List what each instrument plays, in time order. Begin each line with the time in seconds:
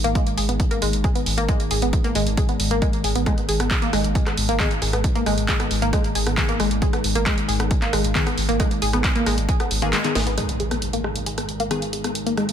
Already playing: synth drone G#2 D#3
0.04 sub bass G#1, synth arpeggio sound A#3, closed hi-hat
0.15 synth arpeggio sound G#3, kick, closed hi-hat
0.27 closed hi-hat
0.38 sub bass G#1, synth arpeggio sound G#4, open hi-hat
0.49 sub bass G#1, synth arpeggio sound B3, closed hi-hat
0.60 kick, closed hi-hat
0.71 synth arpeggio sound A#3, closed hi-hat
0.82 sub bass G#1, synth arpeggio sound G#3, open hi-hat
0.93 sub bass G#1, closed hi-hat
1.04 synth arpeggio sound G#4, kick, closed hi-hat
1.15 synth arpeggio sound B3, closed hi-hat
1.26 sub bass G#1, open hi-hat
1.38 sub bass G#1, synth arpeggio sound A#3, closed hi-hat
1.49 synth arpeggio sound G#3, kick, closed hi-hat
1.60 closed hi-hat
1.71 sub bass G#1, synth arpeggio sound G#4, open hi-hat
1.82 sub bass G#1, synth arpeggio sound B3, closed hi-hat
1.93 kick, closed hi-hat
2.04 synth arpeggio sound A#3, closed hi-hat
2.15 sub bass G#1, synth arpeggio sound G#3, open hi-hat
2.27 sub bass G#1, closed hi-hat
2.37 synth arpeggio sound G#4, kick, closed hi-hat
2.49 synth arpeggio sound B3, closed hi-hat
2.60 sub bass G#1, open hi-hat
2.71 sub bass G#1, synth arpeggio sound A#3, closed hi-hat
2.82 synth arpeggio sound G#3, kick, closed hi-hat
2.93 closed hi-hat
3.04 sub bass G#1, synth arpeggio sound G#4, open hi-hat
3.15 sub bass G#1, synth arpeggio sound B3, closed hi-hat
3.26 synth arpeggio sound G#3, kick, cross-stick, closed hi-hat
3.38 closed hi-hat
3.49 sub bass G#1, synth arpeggio sound G#4, open hi-hat
3.60 sub bass G#1, synth arpeggio sound B3, cross-stick, closed hi-hat
3.71 kick, clap, closed hi-hat
3.82 synth arpeggio sound A#3, closed hi-hat
3.93 sub bass G#1, synth arpeggio sound G#3, cross-stick, open hi-hat
4.04 sub bass G#1, closed hi-hat
4.15 synth arpeggio sound G#4, kick, closed hi-hat
4.27 synth arpeggio sound B3, cross-stick, clap, closed hi-hat
4.37 sub bass G#1, open hi-hat
4.49 sub bass G#1, synth arpeggio sound A#3, closed hi-hat
4.60 synth stab D#3 B3 G#4, synth arpeggio sound G#3, kick, cross-stick, clap, closed hi-hat
4.71 closed hi-hat
4.82 sub bass G#1, synth arpeggio sound G#4, open hi-hat
4.93 sub bass G#1, synth arpeggio sound B3, cross-stick, closed hi-hat
5.04 kick, closed hi-hat
5.15 synth arpeggio sound A#3, closed hi-hat
5.26 sub bass G#1, synth arpeggio sound G#3, cross-stick, open hi-hat
5.38 sub bass G#1, closed hi-hat
5.49 synth arpeggio sound G#4, kick, clap, closed hi-hat
5.60 synth arpeggio sound B3, cross-stick, closed hi-hat
5.71 sub bass G#1, open hi-hat
5.82 sub bass G#1, synth arpeggio sound A#3, closed hi-hat
5.93 synth arpeggio sound G#3, kick, cross-stick, closed hi-hat
6.04 closed hi-hat
6.15 sub bass G#1, synth arpeggio sound G#4, open hi-hat
6.27 sub bass G#1, synth arpeggio sound B3, cross-stick, closed hi-hat
6.37 synth stab D#3 B3 G#4, kick, clap, closed hi-hat
6.49 synth arpeggio sound A#3, closed hi-hat
6.60 sub bass G#1, synth arpeggio sound G#3, cross-stick, open hi-hat
6.71 sub bass G#1, closed hi-hat
6.82 synth arpeggio sound G#4, kick, closed hi-hat
6.93 synth arpeggio sound B3, cross-stick, closed hi-hat
7.04 sub bass G#1, open hi-hat
7.15 sub bass G#1, synth arpeggio sound A#3, closed hi-hat
7.26 synth arpeggio sound G#3, kick, cross-stick, clap, closed hi-hat
7.38 closed hi-hat
7.48 sub bass G#1, synth arpeggio sound G#4, open hi-hat
7.60 sub bass G#1, synth arpeggio sound B3, cross-stick, closed hi-hat
7.71 kick, closed hi-hat
7.82 synth arpeggio sound A#3, clap, closed hi-hat
7.93 sub bass G#1, synth arpeggio sound G#3, cross-stick, open hi-hat
8.04 sub bass G#1, closed hi-hat
8.15 synth stab D#3 B3 G#4, synth arpeggio sound G#4, kick, clap, closed hi-hat
8.27 synth arpeggio sound B3, cross-stick, closed hi-hat
8.38 sub bass G#1, open hi-hat
8.49 sub bass G#1, synth arpeggio sound A#3, closed hi-hat
8.60 synth arpeggio sound G#3, kick, cross-stick, closed hi-hat
8.71 closed hi-hat
8.82 sub bass G#1, synth arpeggio sound G#4, open hi-hat
8.93 sub bass G#1, synth arpeggio sound B3, cross-stick, closed hi-hat
9.04 kick, clap, closed hi-hat
9.16 synth arpeggio sound A#3, closed hi-hat
9.26 sub bass G#1, synth arpeggio sound G#3, cross-stick, open hi-hat
9.38 sub bass G#1, closed hi-hat
9.49 synth arpeggio sound G#4, kick, closed hi-hat
9.60 synth arpeggio sound B3, cross-stick, closed hi-hat
9.71 sub bass G#1, open hi-hat
9.82 sub bass G#1, synth stab D#3 B3 G#4, synth arpeggio sound A#3, closed hi-hat
9.93 synth arpeggio sound G#3, cross-stick, clap, closed hi-hat
10.04 synth stab D#3 B3 G#4, clap, closed hi-hat
10.15 sub bass G#1, synth arpeggio sound G#4, snare, open hi-hat
10.27 sub bass G#1, synth arpeggio sound B3, closed hi-hat
10.37 synth drone G#2 D#3, synth arpeggio sound G#3, cross-stick, closed hi-hat, impact
10.49 closed hi-hat
10.60 synth arpeggio sound G#4, closed hi-hat
10.71 synth arpeggio sound B3, cross-stick, closed hi-hat
10.82 closed hi-hat
10.93 synth arpeggio sound A#3, closed hi-hat
11.04 synth arpeggio sound G#3, cross-stick
11.16 closed hi-hat
11.26 synth arpeggio sound G#4, closed hi-hat
11.38 synth arpeggio sound B3, cross-stick, closed hi-hat
11.49 closed hi-hat
11.60 synth arpeggio sound A#3, closed hi-hat
11.71 synth stab D#3 B3 G#4, synth arpeggio sound G#3, cross-stick, closed hi-hat
11.82 closed hi-hat
11.93 synth arpeggio sound G#4, closed hi-hat
12.04 synth arpeggio sound B3, cross-stick, closed hi-hat
12.15 closed hi-hat
12.27 synth arpeggio sound A#3, closed hi-hat
12.37 synth arpeggio sound G#3, cross-stick, closed hi-hat
12.49 closed hi-hat